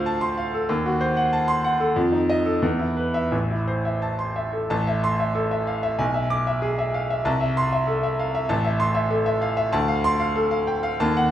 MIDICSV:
0, 0, Header, 1, 2, 480
1, 0, Start_track
1, 0, Key_signature, 0, "minor"
1, 0, Tempo, 633580
1, 519, Time_signature, 2, 2, 24, 8
1, 1481, Tempo, 689655
1, 3401, Tempo, 652884
1, 3881, Tempo, 626959
1, 8431, End_track
2, 0, Start_track
2, 0, Title_t, "Grand piano"
2, 0, Program_c, 0, 0
2, 0, Control_c, 0, 64, 127
2, 0, Note_on_c, 0, 38, 77
2, 0, Note_on_c, 0, 65, 52
2, 0, Note_on_c, 0, 72, 61
2, 0, Note_on_c, 0, 77, 59
2, 46, Note_on_c, 0, 81, 66
2, 116, Note_off_c, 0, 77, 0
2, 160, Note_on_c, 0, 84, 81
2, 234, Note_off_c, 0, 81, 0
2, 285, Note_on_c, 0, 77, 61
2, 351, Note_off_c, 0, 84, 0
2, 408, Note_on_c, 0, 69, 61
2, 474, Note_off_c, 0, 77, 0
2, 494, Note_off_c, 0, 38, 0
2, 522, Note_on_c, 0, 39, 77
2, 523, Note_off_c, 0, 69, 0
2, 531, Control_c, 0, 64, 0
2, 533, Note_off_c, 0, 72, 0
2, 536, Note_off_c, 0, 65, 0
2, 644, Control_c, 0, 64, 127
2, 650, Note_on_c, 0, 66, 58
2, 762, Note_on_c, 0, 72, 64
2, 837, Note_off_c, 0, 66, 0
2, 884, Note_on_c, 0, 78, 61
2, 953, Note_off_c, 0, 72, 0
2, 1006, Note_on_c, 0, 81, 67
2, 1074, Note_off_c, 0, 78, 0
2, 1121, Note_on_c, 0, 84, 84
2, 1194, Note_off_c, 0, 81, 0
2, 1246, Note_on_c, 0, 78, 62
2, 1312, Note_off_c, 0, 84, 0
2, 1365, Note_on_c, 0, 69, 59
2, 1435, Note_off_c, 0, 78, 0
2, 1454, Note_off_c, 0, 39, 0
2, 1484, Note_off_c, 0, 69, 0
2, 1485, Note_on_c, 0, 41, 77
2, 1494, Control_c, 0, 64, 0
2, 1592, Control_c, 0, 64, 127
2, 1597, Note_on_c, 0, 63, 51
2, 1718, Note_on_c, 0, 75, 74
2, 1781, Note_off_c, 0, 63, 0
2, 1832, Note_on_c, 0, 69, 58
2, 1902, Note_off_c, 0, 75, 0
2, 1933, Note_off_c, 0, 41, 0
2, 1946, Note_on_c, 0, 40, 65
2, 1948, Note_off_c, 0, 69, 0
2, 1960, Control_c, 0, 64, 0
2, 2064, Note_on_c, 0, 64, 49
2, 2071, Control_c, 0, 64, 127
2, 2186, Note_on_c, 0, 71, 52
2, 2260, Note_off_c, 0, 64, 0
2, 2307, Note_on_c, 0, 76, 64
2, 2383, Note_off_c, 0, 71, 0
2, 2419, Note_off_c, 0, 40, 0
2, 2429, Note_on_c, 0, 33, 60
2, 2432, Note_off_c, 0, 76, 0
2, 2448, Control_c, 0, 64, 0
2, 2559, Note_on_c, 0, 64, 43
2, 2577, Control_c, 0, 64, 127
2, 2678, Note_on_c, 0, 72, 48
2, 2754, Note_off_c, 0, 64, 0
2, 2800, Note_on_c, 0, 76, 45
2, 2873, Note_off_c, 0, 72, 0
2, 2919, Note_on_c, 0, 81, 47
2, 2994, Note_off_c, 0, 76, 0
2, 3035, Note_on_c, 0, 84, 61
2, 3114, Note_off_c, 0, 81, 0
2, 3154, Note_on_c, 0, 76, 48
2, 3233, Note_off_c, 0, 84, 0
2, 3272, Note_on_c, 0, 69, 44
2, 3350, Note_off_c, 0, 76, 0
2, 3371, Note_off_c, 0, 33, 0
2, 3393, Note_on_c, 0, 81, 69
2, 3394, Note_on_c, 0, 33, 72
2, 3395, Note_off_c, 0, 69, 0
2, 3413, Control_c, 0, 64, 0
2, 3518, Note_on_c, 0, 76, 57
2, 3560, Control_c, 0, 64, 127
2, 3590, Note_off_c, 0, 81, 0
2, 3639, Note_on_c, 0, 84, 77
2, 3713, Note_off_c, 0, 76, 0
2, 3757, Note_on_c, 0, 76, 57
2, 3832, Note_off_c, 0, 84, 0
2, 3868, Note_on_c, 0, 69, 59
2, 3951, Note_off_c, 0, 76, 0
2, 3992, Note_on_c, 0, 76, 55
2, 4069, Note_off_c, 0, 69, 0
2, 4114, Note_on_c, 0, 77, 51
2, 4191, Note_off_c, 0, 76, 0
2, 4236, Note_on_c, 0, 76, 59
2, 4239, Note_off_c, 0, 77, 0
2, 4332, Note_off_c, 0, 33, 0
2, 4355, Note_on_c, 0, 80, 63
2, 4356, Note_on_c, 0, 35, 70
2, 4361, Note_off_c, 0, 76, 0
2, 4378, Control_c, 0, 64, 0
2, 4475, Note_on_c, 0, 76, 54
2, 4515, Control_c, 0, 64, 127
2, 4555, Note_off_c, 0, 80, 0
2, 4598, Note_on_c, 0, 86, 79
2, 4675, Note_off_c, 0, 76, 0
2, 4726, Note_on_c, 0, 76, 56
2, 4797, Note_off_c, 0, 86, 0
2, 4840, Note_on_c, 0, 68, 57
2, 4921, Note_off_c, 0, 76, 0
2, 4967, Note_on_c, 0, 76, 58
2, 5038, Note_off_c, 0, 68, 0
2, 5088, Note_on_c, 0, 77, 52
2, 5161, Note_off_c, 0, 76, 0
2, 5209, Note_off_c, 0, 77, 0
2, 5211, Note_on_c, 0, 76, 61
2, 5297, Note_off_c, 0, 35, 0
2, 5324, Note_on_c, 0, 36, 71
2, 5325, Note_on_c, 0, 81, 66
2, 5330, Note_off_c, 0, 76, 0
2, 5343, Control_c, 0, 64, 0
2, 5442, Note_on_c, 0, 76, 57
2, 5459, Control_c, 0, 64, 127
2, 5516, Note_off_c, 0, 81, 0
2, 5569, Note_on_c, 0, 84, 83
2, 5633, Note_off_c, 0, 76, 0
2, 5687, Note_on_c, 0, 76, 57
2, 5755, Note_off_c, 0, 84, 0
2, 5800, Note_on_c, 0, 69, 57
2, 5873, Note_off_c, 0, 76, 0
2, 5923, Note_on_c, 0, 76, 58
2, 5988, Note_off_c, 0, 69, 0
2, 6045, Note_on_c, 0, 77, 55
2, 6109, Note_off_c, 0, 76, 0
2, 6158, Note_off_c, 0, 77, 0
2, 6162, Note_on_c, 0, 76, 64
2, 6239, Note_off_c, 0, 36, 0
2, 6273, Note_on_c, 0, 81, 68
2, 6275, Note_off_c, 0, 76, 0
2, 6275, Note_on_c, 0, 33, 75
2, 6285, Control_c, 0, 64, 0
2, 6389, Control_c, 0, 64, 127
2, 6392, Note_on_c, 0, 76, 62
2, 6460, Note_off_c, 0, 81, 0
2, 6508, Note_on_c, 0, 84, 84
2, 6579, Note_off_c, 0, 76, 0
2, 6622, Note_on_c, 0, 76, 61
2, 6698, Note_off_c, 0, 84, 0
2, 6743, Note_on_c, 0, 69, 61
2, 6817, Note_off_c, 0, 76, 0
2, 6862, Note_on_c, 0, 76, 64
2, 6939, Note_off_c, 0, 69, 0
2, 6981, Note_on_c, 0, 77, 59
2, 7058, Note_off_c, 0, 76, 0
2, 7098, Note_on_c, 0, 76, 67
2, 7106, Note_off_c, 0, 77, 0
2, 7202, Note_off_c, 0, 33, 0
2, 7218, Note_on_c, 0, 81, 77
2, 7219, Note_on_c, 0, 38, 81
2, 7223, Note_off_c, 0, 76, 0
2, 7243, Control_c, 0, 64, 0
2, 7338, Note_on_c, 0, 77, 65
2, 7344, Control_c, 0, 64, 127
2, 7412, Note_off_c, 0, 81, 0
2, 7461, Note_on_c, 0, 84, 96
2, 7532, Note_off_c, 0, 77, 0
2, 7579, Note_on_c, 0, 77, 65
2, 7654, Note_off_c, 0, 84, 0
2, 7701, Note_on_c, 0, 69, 69
2, 7775, Note_off_c, 0, 77, 0
2, 7819, Note_on_c, 0, 77, 66
2, 7897, Note_off_c, 0, 69, 0
2, 7944, Note_on_c, 0, 79, 59
2, 8017, Note_off_c, 0, 77, 0
2, 8065, Note_on_c, 0, 77, 69
2, 8068, Note_off_c, 0, 79, 0
2, 8159, Note_off_c, 0, 38, 0
2, 8191, Note_off_c, 0, 77, 0
2, 8194, Note_on_c, 0, 39, 84
2, 8194, Note_on_c, 0, 81, 78
2, 8208, Control_c, 0, 64, 0
2, 8322, Note_on_c, 0, 78, 71
2, 8358, Control_c, 0, 64, 127
2, 8392, Note_off_c, 0, 81, 0
2, 8431, Note_off_c, 0, 39, 0
2, 8431, Note_off_c, 0, 78, 0
2, 8431, End_track
0, 0, End_of_file